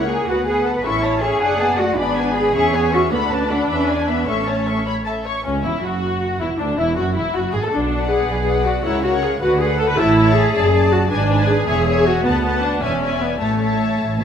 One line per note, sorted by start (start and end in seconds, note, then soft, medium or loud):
0.00 0.21 C#2 medium
0.00 0.28 A#3 medium
0.00 0.28 A#4 soft
0.00 0.28 C#5 medium
0.00 0.27 F#5 soft
0.09 0.28 G#4 medium
0.28 0.78 D2 medium
0.28 0.84 B3 medium
0.28 0.47 F#4 medium
0.28 0.46 B4 soft
0.28 0.47 F#5 soft
0.47 0.65 G#4 medium
0.47 0.84 B4 soft
0.47 0.84 F#5 soft
0.66 0.69 A4 medium
0.76 0.85 B4 medium
0.84 1.37 A1 medium
0.84 1.41 C#4 medium
0.84 1.22 E4 medium
0.84 1.02 A4 medium
0.84 1.02 E5 medium
0.84 1.03 C#6 medium
1.03 1.22 C#5 medium
1.03 1.22 A5 soft
1.22 1.78 G#4 medium
1.22 1.41 A4 soft
1.22 1.41 E5 soft
1.22 1.41 C#6 soft
1.41 1.98 F#1 medium
1.41 1.60 D4 medium
1.41 1.59 D5 medium
1.41 1.58 F#5 medium
1.41 1.59 F#5 soft
1.60 1.79 B3 medium
1.60 1.78 D5 soft
1.60 1.78 F#5 soft
1.60 1.79 A5 soft
1.78 1.98 A3 medium
1.78 1.98 F#4 medium
1.78 1.97 D5 medium
1.78 1.98 F#5 soft
1.78 1.98 F#5 medium
1.97 2.54 G#1 medium
1.97 2.54 B3 medium
1.97 2.35 D4 medium
1.97 2.15 G#4 medium
1.97 2.15 D5 medium
1.97 2.15 B5 medium
2.17 2.36 B4 medium
2.17 2.36 G#5 medium
2.35 2.91 G#4 medium
2.35 2.53 G#4 soft
2.35 2.55 D5 soft
2.35 2.55 B5 medium
2.54 3.12 E2 medium
2.54 2.73 C#4 medium
2.54 2.72 G#4 medium
2.54 2.72 E5 medium
2.54 2.73 C#6 medium
2.73 2.93 B3 medium
2.73 2.93 C#5 medium
2.73 2.93 G#5 medium
2.93 3.12 C#4 medium
2.93 3.01 F#4 medium
2.93 3.12 G#4 medium
2.93 3.12 E5 medium
2.93 3.12 C#6 medium
3.11 3.69 D2 medium
3.11 3.19 B3 medium
3.11 4.28 D4 medium
3.11 3.29 A4 medium
3.11 3.30 F#5 medium
3.11 3.30 B5 medium
3.31 3.38 C#4 medium
3.31 3.50 B4 medium
3.31 3.50 D5 medium
3.31 3.50 A5 soft
3.50 3.58 D4 medium
3.50 3.69 A4 soft
3.50 3.69 F#5 soft
3.50 3.68 B5 medium
3.69 4.27 E2 medium
3.69 4.08 C#4 medium
3.69 3.88 B4 medium
3.69 3.88 E5 medium
3.69 3.88 B5 soft
3.89 4.09 D5 soft
3.89 4.09 G#5 soft
4.08 4.28 B3 medium
4.08 4.28 B4 soft
4.08 4.27 E5 soft
4.08 4.28 B5 soft
4.28 5.26 A1 medium
4.28 4.87 A3 medium
4.28 5.16 C#4 medium
4.28 4.46 A4 soft
4.28 4.47 E5 soft
4.28 4.46 C#6 soft
4.47 4.67 C#5 soft
4.47 4.67 A5 soft
4.67 4.87 A4 soft
4.67 4.87 E5 soft
4.67 4.87 C#6 soft
4.87 5.07 C#5 soft
4.87 4.95 B5 medium
5.06 5.25 A4 soft
5.06 5.25 E5 soft
5.06 5.14 A5 soft
5.25 5.45 C#5 soft
5.25 5.44 C#6 medium
5.45 5.63 C#2 medium
5.45 5.63 C#4 medium
5.45 5.53 C#4 medium
5.45 5.63 C#4 medium
5.64 5.83 E1 medium
5.64 5.83 E2 medium
5.64 5.83 E4 medium
5.83 6.39 F#1 medium
5.83 6.39 F#2 medium
5.83 6.39 F#4 medium
5.83 6.40 F#4 medium
5.83 6.41 F#4 medium
6.40 6.48 E1 soft
6.40 6.48 E2 soft
6.40 6.59 E4 medium
6.40 6.49 E4 medium
6.40 6.60 E4 medium
6.59 6.78 D2 medium
6.59 6.78 D4 medium
6.59 6.67 D4 medium
6.59 6.78 D4 medium
6.78 6.97 E1 medium
6.78 6.97 E2 medium
6.78 6.96 E4 medium
6.78 6.97 E4 medium
6.97 7.16 F#1 medium
6.97 7.16 F#2 medium
6.97 7.04 F#4 medium
6.97 7.16 F#4 medium
7.15 7.35 E1 medium
7.15 7.35 E2 medium
7.15 7.34 E4 medium
7.15 7.35 E4 medium
7.34 7.42 F#1 medium
7.34 7.42 F#2 medium
7.34 7.53 F#4 medium
7.34 7.54 F#4 medium
7.34 7.43 F#4 medium
7.53 7.57 G#1 medium
7.53 7.57 G#2 medium
7.53 7.63 G#4 medium
7.53 7.57 G#4 medium
7.62 7.72 A2 medium
7.62 7.72 A4 medium
7.62 7.67 A4 medium
7.72 8.22 B1 medium
7.72 8.22 B2 medium
7.72 8.09 D4 medium
7.91 8.46 B4 medium
7.91 8.46 D5 medium
7.91 8.46 F#5 medium
8.10 8.65 G#4 medium
8.29 8.78 B1 medium
8.29 8.79 B2 medium
8.47 8.84 B4 soft
8.47 8.84 D5 soft
8.47 8.84 F#5 soft
8.67 8.85 F#4 medium
8.85 9.35 C#2 medium
8.85 9.35 C#3 medium
8.85 9.04 E4 medium
8.85 9.03 A#4 soft
8.85 9.02 C#5 medium
8.85 9.03 F#5 medium
9.04 9.11 F#4 medium
9.04 9.41 A#4 medium
9.04 9.41 C#5 medium
9.04 9.40 F#5 medium
9.22 9.30 G#4 medium
9.41 9.91 D2 medium
9.41 9.92 D3 medium
9.41 9.60 F#4 medium
9.41 9.59 B4 medium
9.41 9.59 F#5 soft
9.60 9.79 G#4 medium
9.60 9.98 B4 medium
9.60 9.98 F#5 medium
9.79 9.89 A4 medium
9.89 9.98 B4 medium
9.98 10.48 A1 medium
9.98 10.48 A2 medium
9.98 10.36 E4 loud
9.98 10.15 C#5 medium
9.98 10.16 E5 medium
9.98 10.16 A5 medium
10.17 10.54 C#5 medium
10.17 10.54 E5 medium
10.17 10.54 A5 medium
10.36 10.91 G#4 loud
10.54 11.05 F#1 medium
10.54 11.05 F#2 medium
10.54 10.73 D5 medium
10.54 10.73 A5 medium
10.74 11.10 D5 medium
10.74 11.11 A5 medium
10.92 11.11 F#4 medium
11.11 11.62 G#1 medium
11.11 11.61 G#2 medium
11.11 11.48 D4 medium
11.11 11.29 B4 medium
11.11 11.29 D5 medium
11.11 11.30 G#5 medium
11.30 11.67 B4 medium
11.30 11.67 D5 medium
11.30 11.67 G#5 medium
11.49 12.06 G#4 loud
11.68 12.18 E1 medium
11.68 12.18 E2 medium
11.68 11.86 C#5 medium
11.68 11.86 E5 medium
11.68 11.86 G#5 medium
11.87 12.24 C#5 medium
11.87 12.25 E5 medium
11.87 12.24 G#5 medium
12.06 12.25 F#4 medium
12.24 12.75 D2 medium
12.24 12.76 D2 medium
12.24 12.63 B3 medium
12.24 12.44 B4 medium
12.24 12.44 F#5 medium
12.24 12.43 A5 medium
12.44 12.82 B4 medium
12.44 12.82 F#5 medium
12.44 12.82 A5 medium
12.63 12.82 D4 medium
12.82 13.34 E1 medium
12.82 13.34 E2 medium
12.82 13.21 C#4 medium
12.82 13.01 D5 medium
12.82 13.02 E5 soft
12.82 13.01 G#5 soft
13.02 13.40 D5 soft
13.02 13.40 E5 soft
13.02 13.40 G#5 soft
13.21 13.41 B3 medium
13.40 13.93 A1 medium
13.40 13.92 A2 medium
13.40 13.99 A3 medium
13.40 13.60 C#5 soft
13.40 13.60 E5 soft
13.40 13.59 A5 soft
13.61 14.18 C#5 soft
13.61 14.18 E5 soft
13.61 14.18 A5 soft
14.00 14.24 A1 medium
14.00 14.18 A2 medium
14.19 14.24 B2 medium
14.19 14.24 C#5 soft
14.19 14.24 E5 soft
14.19 14.24 A5 soft